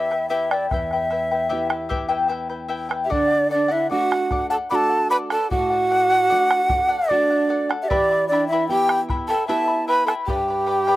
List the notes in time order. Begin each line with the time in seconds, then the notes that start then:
Already playing: E2 E4 G4 B4 E5
0.11 E4 B4 G5, bombo rim
0.29 E4 G4 B4 E5 G5
0.51 E4 G4 B4 D5 E5 G5, bombo rim
0.70 E2 E4 B4 E5 G5, bombo rim, bombo low
0.91 E4 B4 G5, bombo rim
1.10 E4 B4 E5 G5, bombo rim
1.31 E4 B4 G5
1.49 B3 E4 G4 B4 E5 G5
1.69 E4 B4 G5, bombo rim
1.89 E4 G4 B4 E5 G5, bombo low
2.09 E4 G4 B4 E5 G5, bombo rim
2.28 E4 B4 E5 G5, bombo rim
2.49 E4 B4 G5
2.68 E4 B4 E5 G5
2.89 E4 B4 G5, bombo rim
3.04 G4 E5
3.09 D3 D4 A4 D5 F#5, bombo low
3.28 D5 F#5
3.49 D4 A4 D5 F#5
3.68 E4 A4 D5 E5 F#5
3.89 A3 D4 F#4 A4 D5 F#5
4.10 D5 F#5, bombo rim
4.31 A4 D5 F#5, bombo rim, bombo low
4.50 A4 D5 F#5 A5
4.70 A3 D4 F#4 A4 D5 F#5 B5
4.75 A5
4.90 D5 F#5
5.09 A4 B4 D5 F#5 B5
5.30 A4 D5 F#5 A5, bombo rim
5.50 A2 F#4 A4 D5 F#5, bombo low
5.70 D5 F#5
5.90 A4 D5 F#5
6.10 A4 D5 F#5
6.30 A3 D4 F#4 A4 D5 F#5
6.51 D5 F#5, bombo rim
6.69 A4 D5 F#5, bombo rim, bombo low
6.89 A4 D5 F#5
7.08 A3 D4 F#4 A4 D5 F#5
7.30 D5 F#5
7.49 A4 D5 F#5
7.69 A4 D5 F#5, bombo rim
7.82 G4 E5
7.88 E3 E4 G4 B4 D5 E5 G5 B5, bombo low
8.11 E4 E5 B5
8.28 D4 E4 D5 G5
8.33 E5 B5
8.48 E4 E5
8.52 E4 B4 E5 G5 B5
8.68 B3 E4 G4 E5 G5
8.72 B5
8.89 E4 E5 B5, bombo rim
9.09 E4 E5 G5 B5, bombo rim, bombo low
9.28 E4 A4 B4 E5 G5 A5 B5
9.47 B3 E4 G4 B4 E5 G5 A5 B5
9.68 E4 E5 B5
9.87 E4 B4 E5 G5 B5
10.06 E4 A4 B4 E5 G5 A5 B5, bombo rim
10.26 G2 G4 B4 D5 G5 B5, bombo low
10.48 B4 D5 B5
10.66 B4 D5 G5 B5, bombo rim
10.87 G4 B4 D5 G5 B5, bombo rim